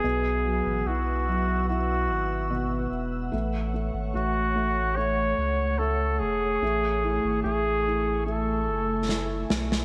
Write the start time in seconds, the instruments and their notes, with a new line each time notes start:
Already playing: flugelhorn G#4, ambient pad B4 E5
0.03 sub bass B1, felt piano B2, ambient pad F#5 E6
0.45 felt piano F#3
0.67 sub bass A1
0.86 sub bass B1, felt piano E4, flugelhorn F#4
1.29 felt piano F#3
1.69 felt piano E4, flugelhorn F#4
2.08 sub bass G#1
2.50 felt piano B2
2.92 sub bass E1
3.32 sub bass A1, felt piano A3, ambient pad A3 C#5 C#6
3.74 felt piano A3
3.94 sub bass G#1
4.14 sub bass A1, felt piano A3, flugelhorn F#4
4.56 felt piano A3
4.96 felt piano A3, flugelhorn C#5
5.38 sub bass C#2
5.78 felt piano A3, flugelhorn A4
6.19 sub bass E1, flugelhorn G#4
6.62 sub bass A1, felt piano A3, ambient pad A3 E5 G#5
7.03 felt piano E4
7.25 sub bass G#1
7.43 sub bass A1, felt piano A3, flugelhorn G#4
7.86 felt piano E4
8.26 felt piano A3, flugelhorn A4
8.68 sub bass F#1
9.09 felt piano E4, snare
9.50 sub bass B1, snare
9.72 snare